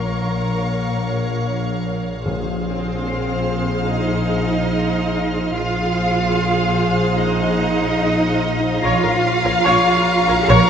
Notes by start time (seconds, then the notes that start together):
Already playing: A#1 A#3 A#4 C#5 F5 A#5 C6 C#6 A#6
0.46 C#6
2.25 A#1 A#2 G#4 C5 F5 C6
2.66 C4 C5
3.07 F6 C7
3.90 D#4 D#5
5.54 A#1 F4 G#4 C5 F5
7.05 F#6
7.18 D#4 D#5
8.82 A#1 F4 C#5 F5 A#5 A#6
9.03 A#1 A#4 C#5
9.44 A#1 A#4 C#5
9.63 A#1 C#5 C#6
10.28 A#1 A#4 C#5
10.48 A#1 A#4 C#5 A#5